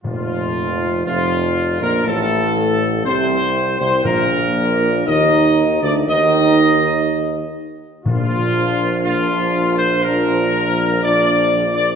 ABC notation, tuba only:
X:1
M:4/4
L:1/16
Q:1/4=60
K:Bb
V:1 name="Tuba" clef=bass
F,,,4 F,,,3 B,,, A,,,4 C,,3 C,, | B,,,4 E,,3 D,, E,,6 z2 | B,,,16 |]